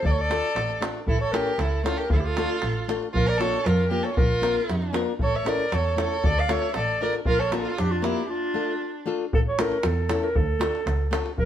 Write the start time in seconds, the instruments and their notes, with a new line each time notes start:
0.03 double bass D2, violin A4, clarinet D5, davul low
0.10 violin A4, clarinet C#5
0.18 violin A4, clarinet D5, davul high
0.30 nylon-string guitar A3 D4 F4 A4, davul high
0.44 davul high
0.55 double bass A1, davul high
0.70 davul high
0.81 nylon-string guitar A3 D4 F4 A4, davul high
1.07 double bass A1, violin E4, clarinet A4, davul low
1.21 violin A4, clarinet C#5
1.32 nylon-string guitar A3 C#4 E4 A4, violin G4, clarinet A#4, davul high
1.47 davul high
1.58 double bass C#2, violin E4, clarinet A4, davul high
1.84 nylon-string guitar A3 C#4 E4 A4, violin F4, clarinet A4, davul high
1.98 violin G4, clarinet A#4, davul high
2.10 double bass D2, violin F4, clarinet A4, davul low
2.16 violin E4
2.20 clarinet G4
2.24 violin F4, clarinet A4
2.37 nylon-string guitar A3 D4 F4 A4, davul high
2.50 davul high
2.62 double bass A1, davul high
2.88 nylon-string guitar A3 D4 F4 A4, davul high
3.03 davul high
3.13 double bass A#1, violin F4, clarinet A#4, davul low
3.27 violin A#4, clarinet D5
3.37 nylon-string guitar A#3 D4 F4, violin A4, clarinet C#5, davul high
3.42 nylon-string guitar A#4
3.54 davul high
3.64 double bass F2, violin F4, clarinet A#4, davul high
3.89 nylon-string guitar A#3 D4 F4 A#4, violin G4, clarinet A#4
4.03 violin A4, clarinet C#5, davul high
4.15 double bass A#1, violin F4, clarinet A#4, davul low
4.42 nylon-string guitar A#3 D4 F4 A#4, davul high
4.57 davul high
4.70 double bass F2, davul high
4.82 davul high
4.93 nylon-string guitar A#3 D4 F4 A#4, davul high
5.19 double bass A1, violin A4, clarinet C#5, davul low
5.35 violin C#5, clarinet E5
5.45 nylon-string guitar A3 C#4 E4 A4, violin A#4, clarinet D5, davul high
5.60 davul high
5.72 double bass E2, violin A4, clarinet C#5, davul high
5.96 nylon-string guitar A3 C#4 E4 A4, davul high
6.00 violin A4, clarinet C#5
6.12 davul high
6.24 double bass D2, violin A4, clarinet D5, davul low
6.38 violin D5, clarinet F5
6.49 nylon-string guitar A3 D4 F4 A4, violin C#5, clarinet E5, davul high
6.62 davul high
6.74 double bass A1, violin A4, clarinet D5, davul high
7.01 nylon-string guitar A3 D4 F4 A4, violin A#4, clarinet D5
7.13 davul high
7.25 double bass A#1, violin F4, clarinet A#4, davul low
7.39 violin A4, clarinet C#5
7.52 nylon-string guitar A#3 D4 F4 A#4, davul high
7.60 violin F4, clarinet A4
7.65 davul high
7.77 double bass F2, violin D4, clarinet G4, davul high
7.91 violin D4, clarinet F4
8.02 nylon-string guitar A#3 D4 F4 A#4, violin E4, clarinet G4, davul high
8.17 davul high
8.29 violin D4, clarinet F4
8.54 nylon-string guitar A3 D4 F4 A4
9.06 nylon-string guitar A3 D4 F4 A4
9.33 double bass A1, clarinet A4, davul low
9.48 clarinet C#5
9.59 nylon-string guitar A3 C#4 E4 A4, clarinet A#4, davul high
9.72 davul high
9.83 double bass E2, clarinet A4, davul high
10.09 nylon-string guitar A3 C#4 E4 A4, clarinet A4, davul high
10.23 clarinet A#4, davul high
10.36 double bass D2, clarinet A4, davul low
10.59 nylon-string guitar A3 D4 F4 A4, davul high
10.75 davul high
10.86 double bass C#2, davul high
11.11 nylon-string guitar A3 D4 F4 A4, davul high
11.26 davul high
11.38 double bass A#1, clarinet A#4, davul low